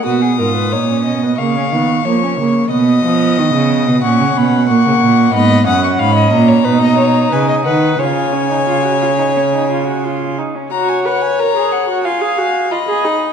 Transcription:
X:1
M:4/4
L:1/16
Q:1/4=90
K:F#mix
V:1 name="Violin"
d'8 c'8 | d'8 c'2 b2 c'4 | [K:F#] b2 d' c' b2 a6 g2 f2 | g12- g2 z2 |
a g f g a2 f2 _a4 _c'4 |]
V:2 name="Violin"
F G A B c2 d2 ^e4 c4 | d8 f8 | [K:F#] d2 f2 e d2 c B d c2 B d B2 | c12- c2 z2 |
c8 =f4 d4 |]
V:3 name="Viola"
B,2 ^E2 D C2 B, A, C B,2 A, C A,2 | B,8 C4 A,4 | [K:F#] B,2 C6 D8 | E2 C D E F E D C D E F E2 D C |
F2 B2 A G2 F =F _A ^F2 =F A D2 |]
V:4 name="Cello" clef=bass
B,,2 G,,2 A,,2 B,,2 C,2 D,2 ^E,2 C,2 | B,,2 ^E,2 D, C,2 B,, A,, C, B,,2 A,, C, A,,2 | [K:F#] G,,2 F,,2 G,,2 A,,2 B,,4 C,2 D,2 | C,12- C,2 z2 |
z16 |]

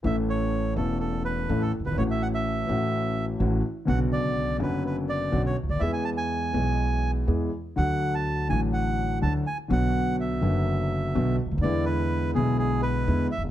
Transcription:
X:1
M:4/4
L:1/16
Q:1/4=124
K:A
V:1 name="Bandoneon"
e2 c4 A2 A2 B3 A2 B | c e f e8 z4 z | f2 d4 B2 B2 d3 c2 d | e g a g8 z4 z |
f3 a3 g2 f4 a2 g2 | f4 e8- e2 z2 | d2 B4 G2 G2 B4 e2 |]
V:2 name="Grand piano" clef=bass
[A,,,A,,E,A,CA]6 [E,,,E,,E,A,CA]6 [A,,,A,,E,A,CA]2 z/2 F,,,/2 =G,,,/2 ^G,,,/2 | [A,,,A,,E,A,CF]6 [A,,,A,,E,A,CF]6 [A,,,A,,E,A,CF]2 z2 | [B,,,B,,C,D,B,F]6 [F,,,F,,D,B,CF]6 [B,,,B,,D,B,CF]2 z/2 C,,/2 D,,/2 ^D,,/2 | [E,,E,G,B,G]6 [B,,,B,,E,G,B,G]6 [E,,E,G,B,G]2 z2 |
[D,,D,F,A,F]6 [A,,,A,,D,F,A,F]6 [D,,D,F,A,F]2 z2 | [B,,,B,,D,F,B,F]6 [F,,,F,,D,F,B,F]6 [B,,,B,,D,F,B,F]2 z/2 C,,/2 D,,/2 ^D,,/2 | [E,,D,E,G,B,E]6 [B,,,B,,D,G,B,E]6 [E,,D,E,G,B,E]2 z/2 F,,,/2 =G,,,/2 z/2 |]
V:3 name="Upright bass" clef=bass
A,,,4- A,,,3/2 z/2 E,,,4- E,,,3/2 z/2 A,,,3/2 z F,,,/2 =G,,,/2 ^G,,,/2 | A,,,4- A,,,3/2 z/2 A,,,4- A,,,3/2 z/2 A,,,3/2 z2 z/2 | B,,,4- B,,,3/2 z/2 F,,,4- F,,,3/2 z/2 B,,,3/2 z C,,/2 D,,/2 ^D,,/2 | E,,4- E,,3/2 z/2 B,,,4- B,,,3/2 z/2 E,,3/2 z2 z/2 |
D,,4- D,,3/2 z/2 A,,,4- A,,,3/2 z/2 D,,3/2 z2 z/2 | B,,,4- B,,,3/2 z/2 F,,,4- F,,,3/2 z/2 B,,,3/2 z C,,/2 D,,/2 ^D,,/2 | E,,4- E,,3/2 z/2 B,,,4- B,,,3/2 z/2 E,,3/2 z F,,,/2 =G,,,/2 z/2 |]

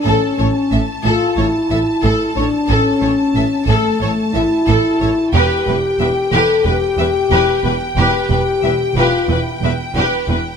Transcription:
X:1
M:4/4
L:1/8
Q:1/4=91
K:Am
V:1 name="Violin section"
a8- | a8 | g8- | g8 |]
V:2 name="Violin section"
A ^c e A c e A c | A ^c e A c e A c | G B e G B e G B | G B e G B e G B |]
V:3 name="Viola section"
A A A A A A A A | A A A A A A A A | B B B B B B B B | B B B B B B B B |]
V:4 name="French horn section"
^C3 F E3 D | ^C3 A, A, E3 | G3 A G4 | G3 F E z3 |]
V:5 name="Cello section" clef=bass
A,, A,, A,, A,, A,, A,, A,, A,, | A,, A,, A,, A,, A,, A,, A,, A,, | E,, E,, E,, E,, E,, E,, E,, E,, | E,, E,, E,, E,, E,, E,, E,, E,, |]
V:6 name="Double bass section" clef=bass
A,,, A,,, A,,, A,,, A,,, A,,, A,,, A,,, | A,,, A,,, A,,, A,,, A,,, A,,, A,,, A,,, | E,,, E,,, E,,, E,,, E,,, E,,, E,,, E,,, | E,,, E,,, E,,, E,,, E,,, E,,, E,,, E,,, |]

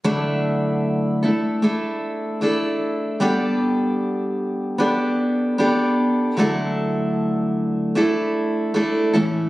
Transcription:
X:1
M:4/4
L:1/8
Q:"Swing 16ths" 1/4=76
K:D
V:1 name="Steel-string acoustic guitar"
[D,F,A,DEA]3 [A,DEA] [A,DEA]2 [A,DEA]2 | [G,B,DGA]4 [B,DGA]2 [B,DGA]2 | [D,F,A,DEA]4 [A,DEA]2 [A,DEA] [A,,E,A,CEA] |]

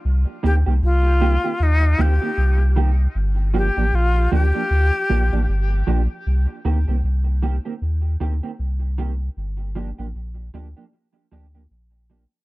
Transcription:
X:1
M:4/4
L:1/16
Q:"Swing 16ths" 1/4=77
K:Cdor
V:1 name="Flute"
z2 G2 F4 E2 G4 z2 | z2 G2 F2 G8 z2 | z16 | z16 |]
V:2 name="Clean electric guitar"
z2 [E,B,CG] [E,B,CG] z2 [E,B,CG] [E,B,CG] z2 [E,B,CG] [E,B,CG] z2 [E,B,CG] z | z2 [F,B,DG] [F,B,DG] z2 [F,B,DG] [F,B,DG] z2 [F,B,DG] [F,B,DG] z2 [F,B,DG] z | z2 [E,B,CG] [E,B,CG] z2 [E,B,CG] [E,B,CG] z2 [E,B,CG] [E,B,CG] z2 [E,B,CG] z | z2 [F,B,DG] [F,B,DG] z2 [F,B,DG] [F,B,DG] z2 [F,B,DG] [F,B,DG] z2 [F,B,DG] z |]
V:3 name="Sub bass" clef=bass
C,, z D,, C,, C,,3 z E,,2 D,, z C,,4 | G,,,3 A,,, B,,,2 D,, z D,, z B,,, A,,, G,,,2 B,,, z | C,, z D,, C,, C,,3 z E,,2 D,, z C,,4 | G,,,3 A,,, B,,,2 D,, z3 D,,2 B,,,3 z |]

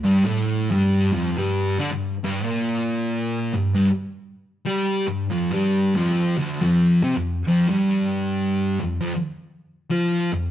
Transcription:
X:1
M:4/4
L:1/16
Q:"Swing" 1/4=92
K:Gdor
V:1 name="Distorted electric guitar" clef=bass
[G,,G,] [A,,A,]3 [G,,G,]2 [F,,F,]2 [G,,G,]2 [D,D] G,,2 [G,,G,] [B,,B,]2- | [B,,B,]4- [B,,B,] G,, [G,,G,] z4 z [G,G]2 G,,2 | [F,,F,] [G,,G,]3 [F,,F,]2 [D,,D,]2 [F,,F,]2 [C,C] F,,2 [F,,F,] [G,,G,]2- | [G,,G,]4- [G,,G,] F,, [F,,F,] z4 z [F,F]2 F,,2 |]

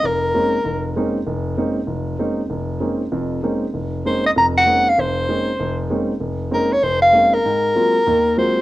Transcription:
X:1
M:4/4
L:1/8
Q:"Swing" 1/4=195
K:Bbm
V:1 name="Soprano saxophone"
B6 z2 | z8 | z8 | z2 c e b g2 f |
c6 z2 | z2 B d c f2 B- | B6 c2 |]
V:2 name="Grand piano"
F,,,2 [A,B,CDE] z F,,,2 [A,B,CDE] z | F,,,2 [A,B,CDE] z F,,,2 [A,B,CDE] z | F,,,2 [A,B,CDE] z [F,,,F,,]2 [A,B,CDE] z | F,,,2 [A,B,CDE] z [F,,,F,,]2 [A,B,CDE] z |
F,,,2 [A,B,CDE] z F,,,2 [A,B,CDE] z | F,,,2 [A,B,CDE] z F,,,2 [A,B,CDE] z | A,,2 [G,A,B,CF] z [E,,E,]2 [G,A,B,CF] z |]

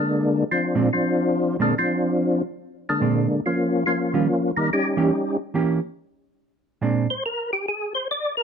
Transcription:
X:1
M:4/4
L:1/8
Q:"Swing" 1/4=142
K:Bbmix
V:1 name="Tonewheel organ"
[D,A,B,D]2 [F,CDF]2 [F,CDF]3 [D,A,B,D] | [F,CDF]3 z2 [D,A,B,D]3 | [F,B,_DF]2 [F,B,DF]3 [E,G,B,E] [G,DEG]2- | [G,_DEG] z6 z |
z c B G A c d B |]
V:2 name="Hollow-body jazz guitar"
z3 [B,,A,CD] z3 [B,,A,CD] | z6 [B,,A,CD] z | z3 [E,G,_DF] z3 [=E,B,DG] | z2 [=E,B,^CG] z4 z |
[B,,A,CD] z6 z |]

